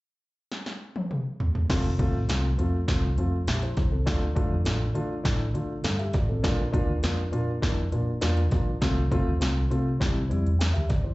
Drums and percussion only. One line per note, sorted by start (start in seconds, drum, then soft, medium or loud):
0.52 snare soft
0.66 snare soft
0.96 high tom medium
1.11 mid tom medium
1.40 floor tom medium
1.55 floor tom medium
1.70 kick medium
1.70 snare loud
1.70 crash medium
1.99 kick medium
1.99 closed hi-hat medium
2.29 snare loud
2.29 closed hi-hat medium
2.59 closed hi-hat medium
2.88 kick medium
2.88 snare loud
2.88 closed hi-hat medium
3.18 closed hi-hat medium
3.47 snare loud
3.47 closed hi-hat medium
3.63 closed hi-hat soft
3.77 kick medium
3.77 snare soft
3.77 closed hi-hat medium
4.07 kick medium
4.07 snare loud
4.07 closed hi-hat medium
4.36 kick medium
4.36 closed hi-hat medium
4.65 snare medium
4.65 closed hi-hat medium
4.95 closed hi-hat medium
5.25 kick medium
5.25 snare loud
5.25 closed hi-hat medium
5.55 closed hi-hat medium
5.84 snare loud
5.84 closed hi-hat medium
5.99 closed hi-hat soft
6.13 kick medium
6.13 snare soft
6.13 closed hi-hat medium
6.44 kick medium
6.44 snare medium
6.44 closed hi-hat medium
6.74 kick medium
6.74 closed hi-hat medium
7.03 snare medium
7.03 closed hi-hat medium
7.33 closed hi-hat medium
7.62 kick medium
7.62 snare loud
7.62 closed hi-hat medium
7.92 closed hi-hat medium
8.21 snare loud
8.21 closed hi-hat medium
8.37 closed hi-hat soft
8.51 kick medium
8.51 snare soft
8.51 closed hi-hat medium
8.82 kick loud
8.82 snare loud
8.82 closed hi-hat medium
9.12 kick medium
9.12 closed hi-hat medium
9.41 snare medium
9.41 closed hi-hat medium
9.71 closed hi-hat medium
10.01 kick medium
10.01 snare loud
10.01 closed hi-hat medium
10.31 closed hi-hat medium
10.46 closed hi-hat soft
10.61 snare loud
10.61 closed hi-hat medium
10.76 closed hi-hat soft
10.90 kick medium
10.90 snare soft
10.90 closed hi-hat medium